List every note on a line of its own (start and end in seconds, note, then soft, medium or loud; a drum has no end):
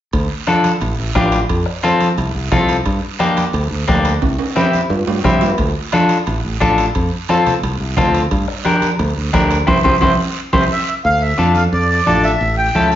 0.13 0.27 D2 medium
0.13 bombo low medium
0.13 high timbale medium
0.13 long guiro medium
0.47 0.71 D4 medium
0.47 0.71 F4 medium
0.47 0.71 A4 medium
0.47 bombo rim medium
0.47 high conga medium
0.47 high timbale medium
0.47 short guiro medium
0.64 high conga medium
0.64 high timbale medium
0.64 short guiro medium
0.81 0.95 A1 loud
0.81 high timbale medium
0.81 long guiro medium
0.99 1.12 A1 medium
1.15 1.43 A1 medium
1.15 1.39 D4 medium
1.15 1.39 F4 medium
1.15 1.40 G4 medium
1.15 bombo low medium
1.15 bombo rim medium
1.15 high conga medium
1.15 high timbale medium
1.15 low timbale medium
1.15 short guiro medium
1.32 high timbale medium
1.32 short guiro medium
1.49 1.63 F2 medium
1.49 bombo low medium
1.49 high timbale medium
1.49 long guiro medium
1.66 bombo rim medium
1.83 2.07 C4 medium
1.83 2.08 F4 medium
1.83 2.08 A4 medium
1.83 bombo rim medium
1.83 high conga medium
1.83 high timbale medium
1.83 short guiro medium
2.00 high conga medium
2.00 high timbale medium
2.00 short guiro medium
2.17 2.31 C2 medium
2.17 high timbale medium
2.17 long guiro medium
2.35 2.49 C2 medium
2.52 2.79 C2 medium
2.52 2.76 C4 medium
2.52 2.76 F4 medium
2.52 2.76 A4 medium
2.52 bombo low medium
2.52 bombo rim medium
2.52 high conga medium
2.52 low conga medium
2.52 high timbale medium
2.52 short guiro medium
2.69 high timbale medium
2.69 short guiro medium
2.85 3.00 G2 medium
2.85 bombo low medium
2.85 high timbale medium
2.85 long guiro medium
3.19 3.44 A#3 medium
3.19 3.44 D4 medium
3.19 3.44 G4 medium
3.19 bombo rim medium
3.19 high conga medium
3.19 high timbale medium
3.19 short guiro medium
3.37 high conga medium
3.37 high timbale medium
3.37 short guiro medium
3.53 3.67 D2 loud
3.53 high timbale medium
3.53 long guiro medium
3.71 3.85 D2 medium
3.87 4.16 D2 medium
3.87 4.12 A#3 medium
3.87 4.12 D4 medium
3.87 4.12 G4 medium
3.87 bombo low medium
3.87 bombo rim medium
3.87 high conga medium
3.87 high timbale medium
3.87 short guiro medium
4.05 high timbale medium
4.05 short guiro medium
4.22 4.36 C2 medium
4.22 bombo low medium
4.22 high timbale medium
4.22 long guiro medium
4.39 high timbale medium
4.56 4.80 C4 medium
4.56 4.80 E4 medium
4.56 4.80 G4 medium
4.56 bombo rim medium
4.56 high conga medium
4.56 high timbale medium
4.56 short guiro medium
4.73 high conga medium
4.73 short guiro medium
4.90 5.04 G2 medium
4.90 low timbale medium
4.90 long guiro medium
5.07 5.21 G2 medium
5.07 low timbale medium
5.24 5.52 G2 medium
5.24 5.48 C4 medium
5.24 5.49 E4 medium
5.24 5.49 G4 medium
5.24 bombo low medium
5.24 bombo rim medium
5.24 high conga medium
5.24 low conga medium
5.24 short guiro medium
5.41 low timbale medium
5.41 short guiro medium
5.58 5.72 D2 medium
5.58 bombo low medium
5.58 high timbale medium
5.58 long guiro medium
5.92 6.17 D4 medium
5.92 6.17 F4 medium
5.92 6.17 A4 medium
5.92 bombo rim medium
5.92 high conga medium
5.92 high timbale medium
5.92 short guiro medium
6.09 high timbale medium
6.09 short guiro medium
6.26 6.41 A1 medium
6.26 high timbale medium
6.26 long guiro medium
6.44 6.58 A1 medium
6.60 6.88 A1 medium
6.60 6.85 D4 medium
6.60 6.85 F4 medium
6.60 6.85 A4 medium
6.60 bombo low medium
6.60 bombo rim medium
6.60 high conga medium
6.60 high timbale medium
6.60 short guiro medium
6.78 high timbale medium
6.78 short guiro medium
6.95 7.09 F2 medium
6.95 bombo low medium
6.95 high timbale medium
6.95 long guiro medium
7.29 7.53 C4 medium
7.29 7.53 F4 medium
7.29 7.53 A4 medium
7.29 bombo rim medium
7.29 high conga medium
7.29 high timbale medium
7.29 short guiro medium
7.47 low conga medium
7.47 high timbale medium
7.47 short guiro medium
7.63 7.77 C2 medium
7.63 high timbale medium
7.63 long guiro medium
7.80 7.94 C2 medium
7.97 8.25 D2 medium
7.97 8.21 C4 medium
7.97 8.21 F4 medium
7.97 8.21 A4 medium
7.97 bombo low medium
7.97 bombo rim medium
7.97 high conga medium
7.97 low conga medium
7.97 high timbale medium
7.97 short guiro medium
8.14 high timbale medium
8.14 short guiro medium
8.31 8.45 G2 medium
8.31 bombo low medium
8.31 high timbale medium
8.31 long guiro medium
8.48 bombo rim medium
8.65 8.89 D4 medium
8.65 8.89 G4 medium
8.65 8.89 A#4 medium
8.65 bombo rim medium
8.65 high conga medium
8.65 high timbale medium
8.65 short guiro medium
8.82 high conga medium
8.82 high timbale medium
8.82 short guiro medium
8.99 9.13 D2 loud
8.99 high timbale medium
8.99 long guiro medium
9.17 9.30 D2 medium
9.33 9.61 D2 medium
9.33 9.57 D4 medium
9.33 9.57 G4 medium
9.33 9.58 A#4 medium
9.33 bombo low medium
9.33 bombo rim medium
9.33 high conga medium
9.33 high timbale medium
9.33 short guiro medium
9.51 high timbale medium
9.51 short guiro medium
9.67 9.80 C2 medium
9.67 9.78 E4 medium
9.67 9.78 G4 medium
9.67 9.78 C5 medium
9.67 bombo low medium
9.67 high conga loud
9.67 high timbale medium
9.67 long guiro medium
9.84 9.98 C2 medium
9.84 9.95 E4 medium
9.84 9.96 G4 medium
9.84 9.95 C5 medium
9.84 bombo low loud
9.84 high conga medium
9.84 high timbale medium
9.84 long guiro medium
10.01 10.15 C2 loud
10.01 10.12 E4 medium
10.01 10.12 G4 medium
10.01 10.12 C5 medium
10.01 bombo low medium
10.01 high conga loud
10.01 high timbale loud
10.01 long guiro loud
10.53 10.66 C2 medium
10.53 10.64 E4 medium
10.53 10.64 G4 medium
10.53 10.64 C5 medium
10.53 bombo low medium
10.53 high conga medium
10.53 high timbale loud
10.53 long guiro loud
10.72 10.86 E5 medium
10.88 10.95 E5 medium
11.05 11.32 D2 medium
11.05 11.22 F5 loud
11.05 long guiro medium
11.22 11.53 E5 medium
11.38 11.66 F2 medium
11.38 11.62 D4 medium
11.38 11.62 F4 medium
11.38 11.62 A4 medium
11.38 high conga medium
11.38 short guiro medium
11.55 11.64 F5 medium
11.55 high conga medium
11.55 short guiro medium
11.72 12.00 F2 medium
11.72 11.88 D5 medium
11.72 long guiro medium
11.89 12.05 D5 medium
12.06 12.34 A1 medium
12.06 12.30 D4 medium
12.06 12.31 F4 medium
12.06 12.31 A4 medium
12.06 12.23 D5 medium
12.06 high conga medium
12.06 short guiro medium
12.24 12.56 E5 medium
12.24 short guiro medium
12.41 12.68 A1 medium
12.41 long guiro medium
12.58 12.89 G5 medium
12.75 12.96 C#2 medium
12.75 12.96 C#4 medium
12.75 12.96 E4 medium
12.75 12.96 A4 medium
12.75 high conga medium
12.75 short guiro medium
12.92 12.96 E5 medium
12.92 short guiro medium